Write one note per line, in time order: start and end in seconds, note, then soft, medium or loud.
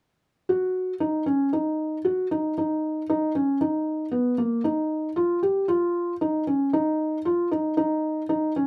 0.49 0.93 F#4 medium
1.00 1.23 D#4 medium
1.26 1.48 C#4 medium
1.53 1.97 D#4 medium
2.05 2.27 F#4 medium
2.31 2.53 D#4 medium
2.58 3.01 D#4 medium
3.10 3.31 D#4 medium
3.35 3.57 C#4 medium
3.61 4.05 D#4 medium
4.12 4.34 B3 medium
4.38 4.60 A#3 medium
4.64 5.08 D#4 medium
5.16 5.38 F4 medium
5.43 5.65 G4 medium
5.68 6.12 F4 medium
6.21 6.43 D#4 medium
6.47 6.69 C#4 medium
6.73 7.17 D#4 medium
7.25 7.47 F4 medium
7.51 7.73 D#4 medium
7.77 8.21 D#4 medium
8.29 8.51 D#4 medium
8.56 8.67 C#4 medium